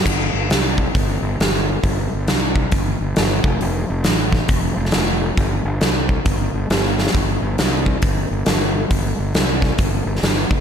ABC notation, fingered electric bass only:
X:1
M:4/4
L:1/8
Q:"Swing" 1/4=136
K:Flyd
V:1 name="Fingered electric bass" clef=bass
G,,, G,,, C,,2 G,,, G,,, G,,,2 | G,,, G,,, C,,2 G,,, G,,, G,,, F,,, | F,,, F,,, A,,,2 F,,, F,,, F,,,2 | G,,, G,,, C,,2 G,,, G,,, G,,,2 |
G,,, G,,, C,,2 G,,, G,,, G,,,2 | G,,, G,,, C,,2 G,,, G,,, G,,, F,,, |]